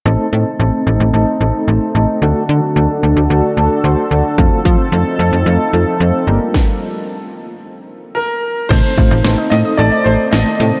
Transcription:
0.06 fm bass A1, synth keys A3 C4 D#4 A4, analog synth pad A3 C4 D#4
0.33 fm bass A2, synth keys A3 C4 D#4 A4
0.59 fm bass A1, synth keys A3 C4 D#4 A4
0.87 fm bass A1, synth keys A3 C4 D#4 A4
1.00 fm bass A1
1.14 fm bass A1, synth keys A3 C4 D#4 A4
1.41 fm bass A1, synth keys A3 C4 D#4 A4
1.68 fm bass A1, synth keys A3 C4 D#4 A4
1.95 fm bass A1, synth keys A3 C4 D#4 A4
2.22 fm bass D2, analog synth pad D3 D4 F#4 A4, synth keys A3 D4 F#4 A4
2.49 fm bass D3, synth keys A3 D4 F#4 A4
2.76 fm bass D2, synth keys A3 D4 F#4 A4
3.03 fm bass D2, synth keys A3 D4 F#4 A4
3.17 fm bass D2
3.30 fm bass D2, synth keys A3 D4 F#4 A4
3.57 fm bass D2, synth keys A3 D4 F#4 A4
3.84 fm bass D2, synth keys A3 D4 F#4 C5
4.11 fm bass D2, synth keys A3 D4 F#4 A4
4.38 fm bass F2, analog synth pad F3 C4 D#4 A4, synth keys A3 C4 F4 A4, kick
4.65 fm bass F3, synth keys A3 C4 F4 C5, kick
4.92 fm bass F2, synth keys A3 C4 F4 A4
5.19 fm bass F2, synth keys A3 C4 F4 A4
5.33 fm bass F2
5.46 fm bass F2, synth keys A3 C4 F4 A4
5.73 fm bass F2, synth keys A3 C4 F4 A4
6.00 fm bass F2, synth keys A3 C4 F4 A4
6.27 fm bass G1, analog synth pad G3 D4 F4 A#4, synth keys A#3 D4 G4 A#4
6.54 kick, snare
8.15 grand piano A#4
8.69 fm bass A1, synth pluck C3, synth keys A3 C4 D#4 A4, analog synth pad A3 C4 D#4, grand piano C5, kick, crash
8.84 synth pluck D#3
8.97 fm bass A1, synth pluck A3, synth keys A3 C4 D#4 F4, kick
9.11 fm bass A1, synth pluck D#4
9.24 fm bass A1, synth keys A3 C4 D#4 A4, synth pluck C5, snare
9.38 synth pluck D#5
9.50 fm bass A2, synth keys A3 C4 D#4 A4, grand piano D#5
9.65 synth pluck D#6
9.77 fm bass A1, synth keys A3 C4 D#4 A4, grand piano D5, synth pluck A5
9.92 synth pluck D#5
10.04 fm bass A1, synth keys A3 C4 D#4 A4, grand piano C5, synth pluck C5
10.31 fm bass A1, synth keys A3 C4 D#4 A4, synth pluck A3, grand piano D#5, snare
10.46 synth pluck D#3
10.60 fm bass A2, synth pluck C3, synth keys A3 C4 D#4 A4
10.73 synth pluck D#3

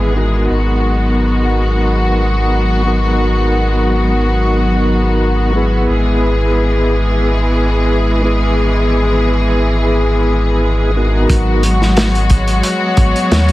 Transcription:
Already playing: sub bass G#1, string section E3 G#3 B3 G#4, tonewheel organ B3 E4 G#4 B4
0.16 tonewheel organ B3 D#4 F#4 A#4
0.50 sub bass G#1, string section F#3 F#4
2.85 tonewheel organ B3 D#4 F#4 A#4
5.55 tonewheel organ B3 E4 G#4 B4
5.89 sub bass G#1, string section E3 G#3 G#4
8.23 tonewheel organ B3 E4 G#4 B4
10.96 tonewheel organ B3 D#4 F#4 A#4
11.29 sub bass G#1, string section F#3 G#3 B3 F#4, synth drone C#5, kick, closed hi-hat
11.63 closed hi-hat
11.82 snare
11.97 snare, closed hi-hat
12.15 closed hi-hat
12.30 kick, closed hi-hat
12.47 closed hi-hat
12.63 closed hi-hat
12.97 sub bass G#1, kick, closed hi-hat
13.16 closed hi-hat
13.31 sub bass D#2, snare, closed hi-hat
13.49 closed hi-hat

